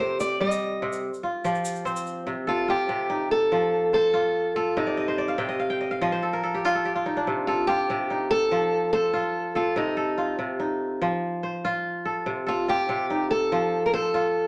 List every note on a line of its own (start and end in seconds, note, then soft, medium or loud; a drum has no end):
0.00 0.81 C3 medium
0.00 1.17 C4 medium
0.00 0.26 F4 medium
0.00 1.40 G4 medium
0.00 0.19 C5 medium
0.00 0.56 C5 medium
0.20 0.41 D5 medium
0.20 shaker medium
0.40 1.08 G3 medium
0.40 0.99 D#5 medium
0.51 shaker soft
0.82 1.08 C3 medium
0.93 shaker soft
1.14 shaker soft
1.23 2.68 F4 medium
1.44 2.33 F3 medium
1.44 2.86 G4 medium
1.44 shaker soft
1.55 shaker soft
1.65 shaker medium
1.76 shaker soft
1.85 3.65 C4 medium
1.85 3.04 C5 medium
1.85 shaker soft
1.96 shaker soft
2.07 shaker soft
2.27 2.88 C3 medium
2.47 2.69 F4 medium
2.47 3.79 A4 medium
2.68 4.13 F4 medium
2.68 3.31 G4 medium
2.89 3.57 C3 medium
3.10 4.72 D#4 medium
3.31 3.93 A4 loud
3.52 4.82 F3 medium
3.93 4.52 A4 medium
3.93 5.08 C5 medium
4.14 5.65 F4 medium
4.56 4.77 F4 medium
4.56 5.88 A4 medium
4.77 5.37 C3 medium
4.77 5.35 D#4 medium
4.87 5.18 D5 medium
4.97 5.24 D#5 medium
5.08 6.12 C5 medium
5.18 5.55 D5 medium
5.28 5.59 F5 medium
5.38 6.07 C3 medium
5.38 5.69 G5 medium
5.49 5.80 D#5 medium
5.59 5.90 F5 medium
5.70 6.63 G5 medium
5.81 6.01 D#5 medium
5.91 6.91 F5 medium
6.01 7.32 F3 medium
6.01 7.08 D#5 medium
6.12 7.31 C5 medium
6.23 6.43 A4 medium
6.33 6.81 A#4 medium
6.43 6.74 A4 medium
6.54 6.85 G4 medium
6.65 6.95 F4 medium
6.75 7.48 A4 medium
6.85 8.26 G4 medium
6.95 7.68 F4 medium
7.06 8.10 D#4 medium
7.17 8.16 D4 medium
7.27 7.89 C3 medium
7.47 7.67 F4 medium
7.47 8.80 A4 medium
7.67 9.13 F4 medium
7.67 8.30 G4 medium
7.90 8.57 C3 medium
8.10 9.73 D#4 medium
8.31 8.92 A4 loud
8.51 9.82 F3 medium
8.93 9.56 A4 medium
8.93 10.12 C5 medium
9.13 10.17 F4 medium
9.55 9.75 F4 medium
9.55 9.96 A4 medium
9.76 10.37 C3 medium
9.76 10.35 D#4 medium
9.97 11.29 A4 medium
10.18 11.64 F4 medium
10.39 11.07 C3 medium
10.60 12.22 D#4 medium
11.02 12.32 F3 medium
11.43 12.62 C5 medium
11.65 12.68 F4 medium
12.05 12.46 A4 medium
12.26 12.88 C3 medium
12.46 12.69 F4 medium
12.46 13.78 A4 medium
12.68 14.14 F4 medium
12.68 13.27 G4 medium
12.89 13.57 C3 medium
13.10 14.47 D#4 medium
13.31 13.85 A4 medium
13.52 14.47 F3 medium
13.86 13.93 A#4 medium
13.93 14.47 A4 medium
13.93 14.47 C5 medium
14.14 14.47 F4 medium